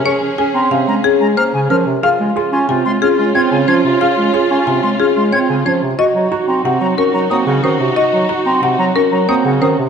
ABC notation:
X:1
M:6/4
L:1/8
Q:1/4=182
K:Db
V:1 name="Flute"
d' z2 b z b z b f' a f' z | f' z2 c' z c' f' c' a' a a' z | f' z2 c' z c' f' c' a' a a' z | d' z2 b z b d' b e' g e' z |
d' z2 b z b d' b e' g e' z |]
V:2 name="Marimba"
d z a z f z A z c z B z | f z c' z a z A z d z c z | f z c' z a z A z d z c z | e z b z g z B z d z c z |
e z b z g z B z d z c z |]
V:3 name="Clarinet"
D D D D D D D D D D D z | F F F F F F F F F F F F | F F F F F F F F F F F z | G G G G G G G G G G G G |
G G G G G G G G G G G z |]
V:4 name="String section"
[DA]8- [DA]3 z | [DF]12- | [DF]8- [DF]3 z | [EG]12- |
[EG]8- [EG]3 z |]
V:5 name="Grand piano"
A z A z C z D z3 D z | A z A z C z D z C z D z | A z A z C z D z C z D z | G z G z C z D z C z D z |
G z G z C z D z C z D z |]
V:6 name="Bass clarinet" clef=bass
z3 C C, A, z A, B, D, F, C, | z A, z D C, A, z A, C D, F, C, | z A, z D C, A, z A, C D, F, C, | z G, z C C, G, z G, B, D, E, C, |
z G, z C C, G, z G, B, D, E, C, |]